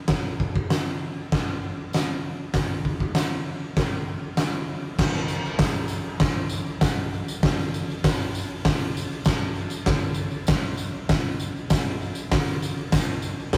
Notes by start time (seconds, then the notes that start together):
0.08 kick, snare, open hi-hat
0.40 kick
0.56 kick
0.70 snare, open hi-hat, tambourine
1.32 kick, snare, open hi-hat
1.93 snare, open hi-hat, tambourine
2.54 kick, snare, open hi-hat
2.85 kick
3.00 kick
3.15 snare, open hi-hat, tambourine
3.77 kick, snare, open hi-hat
4.37 snare, open hi-hat, tambourine
4.98 kick, snare, crash, tambourine
5.14 tambourine
5.28 tambourine
5.45 tambourine
5.59 kick, snare, open hi-hat, tambourine
5.75 tambourine
5.88 tambourine
6.20 kick, snare, open hi-hat
6.49 tambourine
6.66 tambourine
6.81 kick, snare, open hi-hat, tambourine
7.14 tambourine
7.28 tambourine
7.43 kick, snare, open hi-hat, tambourine
7.59 tambourine
7.74 tambourine
7.90 tambourine
8.04 kick, snare, open hi-hat, tambourine
8.20 tambourine
8.35 tambourine
8.65 kick, snare, open hi-hat
8.97 tambourine
9.12 tambourine
9.25 kick, snare, open hi-hat, tambourine
9.55 tambourine
9.70 tambourine
9.86 kick, snare, open hi-hat, tambourine
10.01 tambourine
10.14 tambourine
10.31 tambourine
10.47 kick, snare, open hi-hat, tambourine
10.63 tambourine
10.77 tambourine
11.09 kick, snare, open hi-hat
11.40 tambourine
11.56 tambourine
11.70 kick, snare, open hi-hat, tambourine
12.02 tambourine
12.15 tambourine
12.32 kick, snare, open hi-hat, tambourine
12.47 tambourine
12.62 tambourine
12.77 tambourine
12.92 kick, snare, open hi-hat, tambourine
13.22 tambourine
13.40 tambourine
13.53 kick, snare, open hi-hat